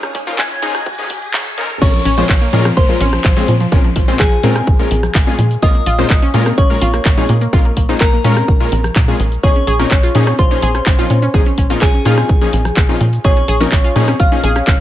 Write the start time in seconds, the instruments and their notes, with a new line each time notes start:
Already playing: synth texture G#4 G#5, riser
0.03 synth arpeggio sound C#4, cross-stick, closed hi-hat
0.15 synth arpeggio sound C#4, kick, open hi-hat
0.27 supersaw synth A#2 F3 C#4 D#4 A#4, synth arpeggio sound F4, closed hi-hat
0.39 synth arpeggio sound C#4, synth bell G#5 G#6, kick, clap, closed hi-hat
0.51 synth arpeggio sound C#4, closed hi-hat
0.62 supersaw synth A#2 F3 C#4 D#4 G#4, synth arpeggio sound D#4, open hi-hat
0.75 cross-stick, closed hi-hat
0.86 kick, closed hi-hat
0.98 supersaw synth A#2 F3 C#4 D#4 G#4, closed hi-hat
1.10 kick, open hi-hat
1.22 closed hi-hat
1.34 supersaw synth A#2 F3 C#4 D#4 C#5, kick, clap, closed hi-hat
1.46 closed hi-hat
1.58 supersaw synth A#2 F3 C#4 D#4 A#4, open hi-hat
1.70 closed hi-hat
1.82 analog synth bass A#1, supersaw synth A#2 G#3 C#4 F4 A#4, synth arpeggio sound C#4, synth bell C#5 C#6, kick, closed hi-hat, crash, downlifter, high conga, shaker
1.94 synth arpeggio sound F3, closed hi-hat
2.05 analog synth bass A#1, synth arpeggio sound C#4, open hi-hat, shaker
2.18 supersaw synth A#2 G#3 C#4 F4 C5, synth arpeggio sound F3, closed hi-hat, high conga, shaker
2.29 analog synth bass A#1, synth arpeggio sound F3, kick, clap, closed hi-hat, shaker
2.41 synth arpeggio sound A#3, closed hi-hat
2.53 supersaw synth A#2 G#3 C#4 F4 A#4, analog synth bass A#2, synth arpeggio sound F3, open hi-hat, shaker
2.65 synth arpeggio sound F3, cross-stick, closed hi-hat, high conga, shaker
2.77 analog synth bass A#1, synth arpeggio sound A#3, synth bell C5 C6, kick, closed hi-hat, shaker
2.89 supersaw synth A#2 G#3 C#4 F4 A#4, synth arpeggio sound F3, closed hi-hat
3.01 analog synth bass A#1, synth arpeggio sound C#4, open hi-hat, high conga, shaker
3.13 synth arpeggio sound F3, cross-stick, closed hi-hat, shaker
3.24 analog synth bass A#1, synth arpeggio sound F3, kick, clap, closed hi-hat, shaker
3.37 supersaw synth A#2 G#3 C#4 F4 G#4, synth arpeggio sound C4, closed hi-hat, high conga, low conga
3.48 analog synth bass A#2, synth arpeggio sound F3, open hi-hat, shaker
3.60 synth arpeggio sound F3, closed hi-hat, shaker
3.72 analog synth bass A#1, supersaw synth A#2 G#3 C#4 F4 A#4, synth arpeggio sound C#4, kick, closed hi-hat, high conga, shaker
3.84 synth arpeggio sound F3, closed hi-hat
3.96 analog synth bass A#1, synth arpeggio sound F3, kick, open hi-hat, shaker
4.08 supersaw synth A#2 G#3 C#4 F4 C5, synth arpeggio sound C4, closed hi-hat, high conga, shaker
4.19 analog synth bass A#1, synth arpeggio sound F3, synth bell G#4 G#5, kick, clap, closed hi-hat, shaker
4.32 synth arpeggio sound F3, closed hi-hat
4.43 supersaw synth A#2 G#3 C#4 F4 A#4, analog synth bass A#2, synth arpeggio sound C4, open hi-hat, shaker
4.56 cross-stick, closed hi-hat, high conga, shaker
4.67 analog synth bass A#1, kick, closed hi-hat, shaker
4.79 supersaw synth A#2 G#3 C#4 F4 A#4, closed hi-hat
4.91 analog synth bass A#1, open hi-hat, high conga, shaker
5.03 cross-stick, closed hi-hat, low conga, shaker
5.15 analog synth bass A#1, kick, clap, closed hi-hat, low conga, shaker
5.27 supersaw synth A#2 G#3 C#4 F4 G#4, closed hi-hat, high conga
5.39 analog synth bass A#2, open hi-hat, low conga, shaker
5.51 closed hi-hat, shaker
5.62 analog synth bass A#1, supersaw synth A#2 G#3 C#4 F4 A#4, synth arpeggio sound F4, synth bell D#5 D#6, kick, closed hi-hat, high conga, shaker
5.75 synth arpeggio sound A#3, closed hi-hat
5.86 analog synth bass A#1, synth arpeggio sound F4, open hi-hat, shaker
5.99 supersaw synth A#2 G#3 C#4 F4 C5, synth arpeggio sound A#3, closed hi-hat, high conga, shaker
6.10 analog synth bass A#1, synth arpeggio sound A#3, kick, clap, closed hi-hat, shaker
6.22 synth arpeggio sound C#4, closed hi-hat
6.34 supersaw synth A#2 G#3 C#4 F4 A#4, analog synth bass A#2, synth arpeggio sound A#3, open hi-hat, shaker
6.46 synth arpeggio sound A#3, cross-stick, closed hi-hat, high conga, shaker
6.58 analog synth bass A#1, synth arpeggio sound C#4, synth bell C#5 C#6, kick, closed hi-hat, shaker
6.70 supersaw synth A#2 G#3 C#4 F4 A#4, synth arpeggio sound A#3, closed hi-hat
6.82 analog synth bass A#1, synth arpeggio sound F4, open hi-hat, high conga, shaker
6.94 synth arpeggio sound A#3, cross-stick, closed hi-hat, shaker
7.05 analog synth bass A#1, synth arpeggio sound A#3, kick, clap, closed hi-hat, shaker
7.17 supersaw synth A#2 G#3 C#4 F4 G#4, synth arpeggio sound D#4, closed hi-hat, high conga, low conga
7.29 analog synth bass A#2, synth arpeggio sound A#3, open hi-hat, shaker
7.41 synth arpeggio sound A#3, closed hi-hat, shaker
7.53 analog synth bass A#1, supersaw synth A#2 G#3 C#4 F4 A#4, synth arpeggio sound F4, kick, closed hi-hat, high conga, shaker
7.65 synth arpeggio sound A#3, closed hi-hat
7.77 analog synth bass A#1, synth arpeggio sound A#3, kick, open hi-hat, shaker
7.89 supersaw synth A#2 G#3 C#4 F4 C5, synth arpeggio sound D#4, closed hi-hat, high conga, shaker
8.01 analog synth bass A#1, synth arpeggio sound A#3, synth bell A#4 A#5, kick, clap, closed hi-hat, shaker
8.13 synth arpeggio sound A#3, closed hi-hat
8.24 supersaw synth A#2 G#3 C#4 F4 A#4, analog synth bass A#2, synth arpeggio sound C#4, open hi-hat, shaker
8.37 cross-stick, closed hi-hat, high conga, shaker
8.48 analog synth bass A#1, kick, closed hi-hat, shaker
8.60 supersaw synth A#2 G#3 C#4 F4 A#4, closed hi-hat
8.72 analog synth bass A#1, open hi-hat, high conga, shaker
8.84 cross-stick, closed hi-hat, low conga, shaker
8.96 analog synth bass A#2, kick, clap, closed hi-hat, low conga, shaker
9.08 supersaw synth A#2 G#3 C#4 F4 G#4, closed hi-hat, high conga
9.20 analog synth bass A#1, open hi-hat, low conga, shaker
9.32 closed hi-hat, shaker
9.43 analog synth bass A#1, supersaw synth A#2 F3 C#4 D#4 G#4, synth arpeggio sound G#4, synth bell C#5 C#6, kick, closed hi-hat, high conga, shaker
9.56 synth arpeggio sound C#4, closed hi-hat
9.67 analog synth bass A#1, synth arpeggio sound G#4, open hi-hat, shaker
9.79 supersaw synth A#2 F3 C#4 D#4 A#4, synth arpeggio sound C#4, closed hi-hat, high conga, shaker
9.91 analog synth bass A#1, synth arpeggio sound C#4, kick, clap, closed hi-hat, shaker
10.03 synth arpeggio sound F4, closed hi-hat
10.15 supersaw synth A#2 F3 C#4 D#4 G#4, analog synth bass A#2, synth arpeggio sound C#4, open hi-hat, shaker
10.27 synth arpeggio sound C#4, cross-stick, closed hi-hat, high conga, shaker
10.39 analog synth bass A#1, synth arpeggio sound F4, synth bell C5 C6, kick, closed hi-hat, shaker
10.51 supersaw synth A#2 F3 C#4 D#4 G#4, synth arpeggio sound C#4, closed hi-hat
10.62 analog synth bass A#1, synth arpeggio sound G#4, open hi-hat, high conga, shaker
10.75 synth arpeggio sound C#4, cross-stick, closed hi-hat, shaker
10.86 analog synth bass A#1, synth arpeggio sound C#4, kick, clap, closed hi-hat, shaker
10.98 supersaw synth A#2 F3 C#4 D#4 F4, synth arpeggio sound F4, closed hi-hat, high conga, low conga
11.10 analog synth bass A#2, synth arpeggio sound C#4, open hi-hat, shaker
11.22 synth arpeggio sound C#4, closed hi-hat, shaker
11.34 analog synth bass A#1, supersaw synth A#2 F3 C#4 D#4 G#4, synth arpeggio sound G#4, kick, closed hi-hat, high conga, shaker
11.46 synth arpeggio sound C#4, closed hi-hat
11.58 analog synth bass A#1, synth arpeggio sound C#4, kick, open hi-hat, shaker
11.70 supersaw synth A#2 F3 C#4 D#4 A#4, synth arpeggio sound F4, closed hi-hat, high conga, shaker
11.81 analog synth bass A#1, synth arpeggio sound C#4, synth bell G#4 G#5, kick, clap, closed hi-hat, shaker
11.94 synth arpeggio sound C#4, closed hi-hat
12.05 supersaw synth A#2 F3 C#4 D#4 G#4, analog synth bass A#2, synth arpeggio sound F4, open hi-hat, shaker
12.18 cross-stick, closed hi-hat, high conga, shaker
12.29 analog synth bass A#1, kick, closed hi-hat, shaker
12.41 supersaw synth A#2 F3 C#4 D#4 G#4, closed hi-hat
12.53 analog synth bass A#1, open hi-hat, high conga, shaker
12.65 cross-stick, closed hi-hat, low conga, shaker
12.77 analog synth bass A#1, kick, clap, closed hi-hat, low conga, shaker
12.89 supersaw synth A#2 F3 C#4 D#4 F4, closed hi-hat, high conga
13.01 analog synth bass A#2, open hi-hat, low conga, shaker
13.13 closed hi-hat, shaker
13.24 analog synth bass A#1, supersaw synth A#2 F3 C#4 D#4 G#4, synth arpeggio sound G#4, synth bell C#5 C#6, kick, closed hi-hat, high conga, shaker
13.37 synth arpeggio sound C#4, closed hi-hat
13.48 analog synth bass A#1, synth arpeggio sound G#4, open hi-hat, shaker
13.60 supersaw synth A#2 F3 C#4 D#4 A#4, synth arpeggio sound C#4, closed hi-hat, high conga, shaker
13.72 analog synth bass A#1, synth arpeggio sound C#4, kick, clap, closed hi-hat, shaker
13.84 synth arpeggio sound F4, closed hi-hat
13.96 analog synth bass A#2, supersaw synth A#2 F3 C#4 D#4 G#4, synth arpeggio sound C#4, open hi-hat, shaker
14.08 synth arpeggio sound C#4, cross-stick, closed hi-hat, high conga, shaker
14.20 analog synth bass A#1, synth arpeggio sound F4, synth bell F5 F6, kick, closed hi-hat, shaker
14.32 supersaw synth A#2 F3 C#4 D#4 G#4, synth arpeggio sound C#4, closed hi-hat
14.43 analog synth bass A#1, synth arpeggio sound G#4, open hi-hat, high conga, shaker
14.56 synth arpeggio sound C#4, cross-stick, closed hi-hat, shaker
14.67 analog synth bass A#1, synth arpeggio sound C#4, kick, clap, closed hi-hat, shaker